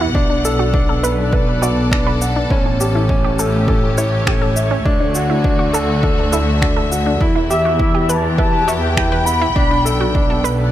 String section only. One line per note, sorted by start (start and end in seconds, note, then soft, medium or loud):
0.00 0.15 E3 medium
0.00 3.45 B3 medium
0.00 0.16 G4 medium
0.00 1.09 F#5 medium
0.16 2.51 B2 medium
1.21 3.45 A4 medium
1.21 2.50 D5 medium
2.50 4.86 A2 medium
2.89 7.21 A3 medium
3.49 4.86 G4 medium
3.57 5.80 C#5 medium
4.85 7.21 D3 medium
5.08 7.21 F#4 medium
5.92 8.00 E5 medium
7.22 9.57 E3 medium
7.90 10.72 B3 medium
8.27 9.56 G4 medium
8.27 10.51 G5 medium
9.56 10.72 B2 medium
10.62 10.72 A4 medium
10.62 10.72 D5 medium